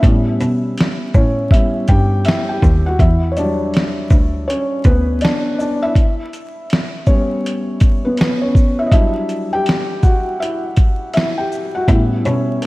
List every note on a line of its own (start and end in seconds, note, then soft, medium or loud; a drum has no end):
0.00 0.35 A2 loud
0.00 1.12 E4 medium
0.00 1.18 E5 loud
0.00 kick loud
0.00 closed hi-hat medium
0.04 1.51 G3 medium
0.04 1.52 B3 soft
0.04 1.15 C#4 medium
0.41 0.61 B2 medium
0.41 closed hi-hat soft
0.41 shaker soft
0.77 snare loud
0.77 closed hi-hat medium
1.14 1.78 A2 medium
1.14 1.25 C#4 medium
1.14 1.23 C#5 medium
1.14 kick medium
1.14 shaker soft
1.51 1.85 G3 soft
1.51 1.86 B3 soft
1.51 1.86 C#4 soft
1.51 1.87 E4 medium
1.51 1.90 E5 medium
1.51 kick medium
1.51 closed hi-hat medium
1.88 2.21 G2 medium
1.88 2.24 G4 medium
1.88 2.23 G5 loud
1.88 kick medium
1.88 closed hi-hat soft
1.88 shaker soft
2.25 2.48 E4 medium
2.25 2.47 E5 loud
2.25 snare loud
2.25 closed hi-hat medium
2.49 2.84 G4 medium
2.49 2.87 G5 medium
2.62 2.95 D#2 medium
2.62 kick medium
2.62 shaker soft
2.86 3.00 F#4 medium
2.86 3.00 F#5 medium
2.99 4.07 E2 medium
2.99 3.30 E4 medium
2.99 3.29 E5 medium
2.99 kick loud
2.99 closed hi-hat medium
3.32 3.37 C#5 medium
3.37 5.92 F#3 medium
3.37 5.93 G3 medium
3.37 4.45 D4 medium
3.37 4.51 D5 medium
3.37 closed hi-hat soft
3.37 shaker soft
3.74 snare loud
3.74 closed hi-hat medium
4.10 4.43 D2 medium
4.10 kick medium
4.10 shaker soft
4.48 4.83 C#4 medium
4.48 4.86 C#5 medium
4.48 closed hi-hat medium
4.84 5.17 D2 loud
4.84 5.20 B3 medium
4.84 5.23 B4 medium
4.84 kick medium
4.84 closed hi-hat soft
4.84 shaker soft
5.21 5.57 D4 medium
5.21 5.57 D5 medium
5.21 snare loud
5.21 closed hi-hat medium
5.59 5.66 D4 medium
5.59 5.64 D5 medium
5.59 shaker soft
5.83 7.04 E4 medium
5.83 7.11 E5 loud
5.95 kick loud
5.95 closed hi-hat medium
6.33 closed hi-hat soft
6.33 shaker soft
6.70 snare loud
6.70 closed hi-hat medium
7.07 7.60 G3 medium
7.07 7.61 B3 soft
7.07 8.01 C#4 medium
7.07 8.07 C#5 medium
7.07 kick medium
7.07 shaker soft
7.46 closed hi-hat medium
7.80 kick medium
7.80 closed hi-hat medium
7.80 shaker soft
8.05 8.18 B3 medium
8.05 8.17 B4 medium
8.17 8.41 B3 medium
8.17 8.40 B4 medium
8.17 snare loud
8.17 closed hi-hat medium
8.42 8.77 C#4 medium
8.42 8.80 C#5 medium
8.55 kick medium
8.55 shaker soft
8.79 8.87 E4 medium
8.79 8.87 E5 medium
8.87 8.92 D#5 medium
8.92 9.45 F#3 medium
8.92 9.46 G3 soft
8.92 9.46 D4 medium
8.92 9.49 E4 medium
8.92 9.54 E5 medium
8.92 kick medium
8.92 closed hi-hat medium
9.29 closed hi-hat soft
9.29 shaker soft
9.53 10.01 G4 medium
9.53 10.05 G5 medium
9.66 snare loud
9.66 closed hi-hat medium
10.03 10.38 F#4 medium
10.03 10.37 F#5 medium
10.03 kick medium
10.03 shaker soft
10.40 11.11 E4 medium
10.40 11.12 E5 medium
10.40 closed hi-hat medium
10.77 kick medium
10.77 closed hi-hat medium
10.77 shaker soft
11.14 11.21 E4 medium
11.14 11.19 E5 medium
11.14 snare loud
11.14 closed hi-hat medium
11.38 11.73 G4 medium
11.38 11.76 G5 medium
11.52 shaker soft
11.75 11.88 F#4 medium
11.75 11.89 F#5 medium
11.88 12.20 A2 loud
11.88 12.66 G3 medium
11.88 12.66 B3 medium
11.88 12.25 C#4 medium
11.88 12.23 E4 medium
11.88 12.26 E5 medium
11.88 kick loud
11.88 closed hi-hat medium
12.25 12.46 B2 medium
12.25 12.61 C#4 medium
12.25 12.64 C#5 medium
12.25 closed hi-hat soft
12.25 shaker soft
12.62 12.66 A4 medium
12.62 closed hi-hat medium